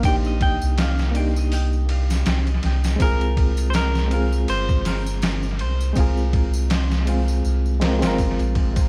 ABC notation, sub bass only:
X:1
M:4/4
L:1/16
Q:"Swing 16ths" 1/4=81
K:Fdor
V:1 name="Sub bass" clef=bass
B,,,3 C,,8- C,, C,,2 C,,2 | C,,8 G,,,6 C,,2 | C,,8 C,,3 G,,,2 B,,,3 |]